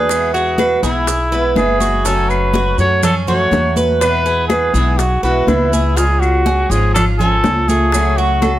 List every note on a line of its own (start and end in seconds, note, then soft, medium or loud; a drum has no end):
0.00 0.77 E2 medium
0.00 0.10 F#4 medium
0.00 0.33 G#4 loud
0.00 0.33 B4 medium
0.09 0.82 B2 medium
0.09 0.83 E3 medium
0.09 0.83 G#3 medium
0.09 0.83 B3 medium
0.09 0.82 E4 medium
0.09 high bongo medium
0.09 high conga soft
0.09 claves medium
0.09 maracas medium
0.34 0.80 F#4 medium
0.34 0.58 G#4 medium
0.34 high conga soft
0.34 maracas soft
0.58 0.83 B4 medium
0.58 high bongo medium
0.58 high conga medium
0.58 claves medium
0.58 maracas soft
0.83 1.52 B1 medium
0.83 1.07 E3 medium
0.83 1.07 G#3 medium
0.83 1.07 B3 medium
0.83 1.07 E4 medium
0.83 1.53 E4 medium
0.83 1.31 G#4 medium
0.83 high bongo soft
0.83 maracas medium
1.07 muted steel-string acoustic guitar stroke medium
1.07 high bongo medium
1.07 high conga soft
1.07 maracas medium
1.32 1.55 E3 medium
1.32 1.56 G#3 medium
1.32 1.56 B3 medium
1.32 1.56 E4 medium
1.32 1.80 B4 medium
1.32 high bongo soft
1.32 high conga soft
1.32 maracas soft
1.56 2.72 F#1 loud
1.56 2.05 E3 soft
1.56 2.05 G#3 soft
1.56 2.05 B3 medium
1.56 2.06 E4 medium
1.56 2.07 G#4 medium
1.56 high bongo soft
1.56 low bongo medium
1.56 high conga medium
1.56 claves medium
1.56 maracas soft
1.80 2.05 F#4 medium
1.80 high bongo soft
1.80 high conga medium
1.80 maracas medium
2.05 2.78 C#3 medium
2.05 2.78 F#3 medium
2.05 2.79 A3 medium
2.05 2.53 C#4 medium
2.05 2.78 C#4 medium
2.05 2.78 F#4 medium
2.05 2.31 A4 medium
2.05 high bongo medium
2.05 high conga soft
2.05 maracas medium
2.29 2.79 B4 medium
2.29 high conga soft
2.29 claves medium
2.29 maracas soft
2.54 3.02 F#4 medium
2.54 high bongo medium
2.54 high conga medium
2.54 maracas soft
2.78 3.48 F#2 loud
2.78 3.03 F#3 medium
2.78 3.03 A3 medium
2.78 3.03 C#4 medium
2.78 3.02 F#4 medium
2.78 3.02 C#5 medium
2.78 high bongo soft
2.78 high conga soft
2.78 maracas medium
3.03 3.27 C#4 medium
3.03 3.15 A4 medium
3.03 muted steel-string acoustic guitar stroke medium
3.03 high bongo medium
3.03 high conga soft
3.03 low conga medium
3.03 claves medium
3.03 maracas medium
3.27 3.51 F#3 medium
3.27 3.52 A3 medium
3.27 3.52 C#4 medium
3.27 3.51 F#4 medium
3.27 3.76 F#4 medium
3.27 3.74 C#5 loud
3.27 high bongo soft
3.27 high conga soft
3.27 low conga medium
3.27 maracas soft
3.51 4.68 E2 medium
3.51 4.00 F#3 soft
3.51 4.01 A3 medium
3.51 4.01 C#4 medium
3.51 4.01 F#4 medium
3.51 high bongo soft
3.51 low bongo medium
3.51 high conga medium
3.51 maracas soft
3.76 4.24 B4 medium
3.76 high bongo soft
3.76 high conga medium
3.76 maracas medium
4.01 4.74 B2 medium
4.01 4.74 E3 medium
4.01 4.76 G#3 medium
4.01 4.74 B3 medium
4.01 4.74 E4 medium
4.01 4.47 B4 loud
4.01 high bongo medium
4.01 high conga soft
4.01 claves medium
4.01 maracas medium
4.26 4.50 G#4 medium
4.26 high conga soft
4.26 maracas soft
4.48 4.99 G#4 medium
4.48 4.74 B4 medium
4.48 high bongo medium
4.48 high conga loud
4.48 claves medium
4.48 maracas soft
4.74 5.20 B1 medium
4.74 4.99 E3 medium
4.74 4.99 G#3 medium
4.74 4.99 B3 medium
4.74 4.98 E4 medium
4.74 5.22 G#4 medium
4.74 high bongo soft
4.74 maracas medium
4.98 5.23 F#4 medium
4.98 muted steel-string acoustic guitar stroke medium
4.98 high bongo medium
4.98 high conga soft
4.98 maracas medium
5.23 5.46 B1 medium
5.23 5.48 G#3 medium
5.23 5.48 B3 medium
5.23 5.48 E4 medium
5.23 5.49 F#4 medium
5.23 5.71 B4 medium
5.23 high bongo soft
5.23 high conga soft
5.23 maracas soft
5.27 5.47 E3 medium
5.47 6.63 C#2 loud
5.47 5.96 E3 soft
5.47 5.97 G#3 soft
5.47 5.97 B3 medium
5.47 5.99 E4 medium
5.47 5.97 E4 medium
5.47 high bongo soft
5.47 low bongo medium
5.47 high conga medium
5.47 claves medium
5.47 maracas soft
5.72 5.97 G#4 medium
5.72 high bongo soft
5.72 high conga medium
5.72 maracas medium
5.97 6.96 C#3 medium
5.97 6.71 G#3 medium
5.97 6.71 C#4 medium
5.97 6.44 F4 medium
5.97 6.22 G#4 medium
5.97 high bongo medium
5.97 maracas medium
6.20 6.72 F#4 loud
6.20 high conga soft
6.20 claves medium
6.20 maracas soft
6.46 6.94 G#4 medium
6.46 high bongo medium
6.46 high conga medium
6.46 maracas soft
6.70 7.40 G#1 medium
6.70 6.95 F3 medium
6.70 6.95 G#3 medium
6.70 6.95 C#4 medium
6.70 6.94 F4 medium
6.70 6.94 G#4 medium
6.70 high bongo soft
6.70 high conga soft
6.70 maracas medium
6.94 7.19 F4 medium
6.94 7.05 A4 medium
6.94 muted steel-string acoustic guitar stroke medium
6.94 high bongo medium
6.94 high conga soft
6.94 low conga medium
6.94 claves medium
6.94 maracas medium
7.19 7.43 F3 medium
7.19 7.43 G#3 medium
7.19 7.44 C#4 medium
7.19 7.43 F4 medium
7.19 7.70 A4 loud
7.19 7.68 G#5 medium
7.19 high bongo soft
7.19 high conga soft
7.19 low conga medium
7.19 maracas soft
7.44 8.59 C#2 medium
7.44 7.92 F3 soft
7.44 7.92 G#3 soft
7.44 7.93 C#4 medium
7.44 7.93 F4 medium
7.44 high bongo soft
7.44 low bongo loud
7.44 high conga medium
7.44 maracas soft
7.68 8.17 A3 medium
7.68 8.19 G#4 medium
7.68 high bongo soft
7.68 high conga medium
7.68 maracas medium
7.92 8.59 C#3 medium
7.92 8.59 F#3 medium
7.92 8.59 A3 medium
7.92 8.59 C#4 medium
7.92 8.59 F#4 medium
7.92 high bongo medium
7.92 claves medium
7.92 maracas medium
8.17 8.59 F#4 medium
8.17 8.42 F#4 medium
8.17 high conga soft
8.17 maracas soft
8.42 8.59 A4 medium
8.42 high bongo medium
8.42 high conga loud
8.42 claves medium
8.42 maracas soft